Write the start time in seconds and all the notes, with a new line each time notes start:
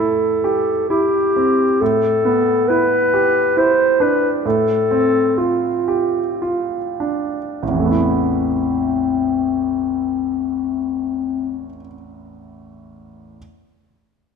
Already playing: A2 A3 A4
0.00 E4
0.44 G4
0.90 E4 G4
1.36 C4
1.81 A2 A4
2.25 B3
2.68 E4 B4
3.14 G4
3.57 E4 C5
4.00 D4 B4
4.45 A2 A4
4.91 C4
5.38 F4
5.88 G4
6.42 F4
7.00 D4
7.60 A1 C4
7.68 E2
7.73 E3
7.80 A3
7.85 B3
7.91 E4